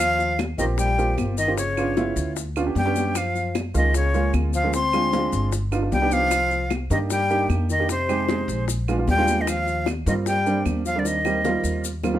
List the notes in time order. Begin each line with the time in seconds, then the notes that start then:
Already playing: D#2 F3 F5
0.00 high conga, maracas
0.19 high bongo, high conga, maracas
0.39 high bongo, high conga, claves, maracas
0.58 A#1 D#3 A#3 C4 F4 G4 D#5, high bongo, high conga, maracas
0.78 G3 G5, high bongo, high conga, maracas
0.98 A#3 C4 F4 G4, high conga, maracas
1.18 G1, high bongo, low bongo, high conga, claves, maracas
1.37 D#3 D#5, high bongo, high conga, maracas
1.48 A#3 C4 F4 G4
1.57 C#3 C#5, high bongo, high conga, maracas
1.77 B3 C#4 D4 F4, high bongo, high conga, claves, maracas
1.97 B3 C#4 E4 F4, high bongo, high conga, maracas
2.16 D2, high bongo, high conga, maracas
2.36 high bongo, high conga, maracas
2.56 B3 C#4 D4 F4, high conga, claves, maracas
2.66 B3 C#4 D4 G4
2.75 F#2 G3 G5, high bongo, low bongo, high conga, maracas
2.85 B3 C#4 D4 G4
2.96 high bongo, high conga, maracas
3.15 F3 F5, high bongo, high conga, claves, maracas
3.35 high bongo, high conga, maracas
3.55 high bongo, high conga, claves, maracas
3.74 C#2 D#3 G#3 A#3 C#4 F4 D#5, high bongo, high conga, maracas
3.94 C#3 C#5, high bongo, high conga, maracas
4.14 G#3 A#3 C#4 F4, high conga, maracas
4.34 D2, high bongo, low bongo, high conga, claves, maracas
4.54 F3 F5, high bongo, high conga, maracas
4.64 G#3 A#3 C#4 F4
4.73 C4 C6, high bongo, high conga, maracas
4.93 G#3 C4 D4 F4, high bongo, high conga, claves, maracas
5.13 G#3 C4 D4 F4, high bongo, high conga, maracas
5.33 G1, high bongo, high conga, maracas
5.52 high bongo, high conga, maracas
5.72 B3 D4 D#4 F4, high conga, claves, maracas
5.82 B3 D4 D#4 F4
5.92 C2 G3 G5, high bongo, low bongo, high conga, maracas
6.01 B3 D4 D#4 G4
6.11 F3 F5, high bongo, high conga, maracas
6.31 high bongo, high conga, claves, maracas
6.51 high bongo, high conga, maracas
6.70 high bongo, high conga, claves, maracas
6.90 G2 D#3 A#3 D4 D#4 G4 D#5, high bongo, high conga, maracas
7.10 G3 G5, high bongo, high conga, maracas
7.30 A#3 D4 D#4 G4, high conga, maracas
7.49 F2, high bongo, low bongo, high conga, claves, maracas
7.69 D#3 D#5, high bongo, high conga, maracas
7.79 A#3 D4 D#4 G4
7.89 C3 C5, high bongo, high conga, maracas
8.09 G#3 C4 D#4 G4, high bongo, high conga, claves, maracas
8.29 G#3 C4 D#4 G#4, high bongo, high conga, maracas
8.48 A#1, high bongo, high conga, maracas
8.68 high bongo, high conga, maracas
8.88 G#3 B3 D4 F4, high conga, claves, maracas
8.99 G#3 B3 D4 F4
9.08 D#2 G3 G5, high bongo, low bongo, high conga, maracas
9.18 G#3 B3 D4 F4
9.28 high bongo, high conga, maracas
9.41 D#3 D#5
9.47 F3 F5, high bongo, high conga, claves, maracas
9.67 high bongo, high conga, maracas
9.86 high bongo, high conga, claves, maracas
10.06 G2 D#3 G3 A#3 C4 F4 D#5, high bongo, high conga, maracas
10.26 G3 G5, high bongo, high conga, maracas
10.46 G3 A#3 C4 D4, high conga, maracas
10.65 D#2, high bongo, low bongo, high conga, claves, maracas
10.86 F3 F5, high bongo, maracas
10.96 D3 G3 A#3 C4 D4 D5
11.05 D#3 D#5, high bongo, high conga, maracas
11.25 G3 A#3 C4 G4, high bongo, high conga, claves, maracas
11.45 G3 A#3 C4 F4, low bongo, high conga, maracas
11.64 D#2, high conga, maracas
11.84 high conga, maracas
12.03 G3 A#3 C4 F4, low bongo, high conga, claves, maracas
12.14 G3 A#3 C4 F4